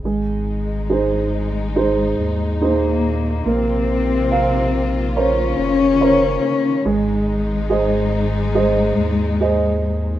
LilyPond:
<<
  \new Staff \with { instrumentName = "Upright piano" } { \time 4/4 \key aes \major \tempo 4 = 71 aes4 <ees' aes' c''>4 <ees' aes' c''>4 <ees' aes' c''>4 | bes4 <bes' c'' f''>4 <bes' c'' des''>4 <bes' c'' des''>4 | aes4 <aes' c'' ees''>4 <aes' c'' ees''>4 <aes' c'' ees''>4 | }
  \new Staff \with { instrumentName = "String section" } { \time 4/4 \key aes \major << { <aes ees'>1 | <bes f'>1 | <aes ees'>1 | } \\ { ees1~ | ees1~ | ees1 | } >> }
  \new Staff \with { instrumentName = "Cello section" } { \clef bass \time 4/4 \key aes \major <aes, aes>2. <bes, bes>4 | <c c'>2 <des des'>2 | <aes, aes>1 | }
  \new Staff \with { instrumentName = "Sub bass" } { \clef bass \time 4/4 \key aes \major aes,,2~ aes,,8 ees,4. | bes,,2~ bes,,8 f,,4 r8 | aes,,2~ aes,,8 ees,4. | }
>>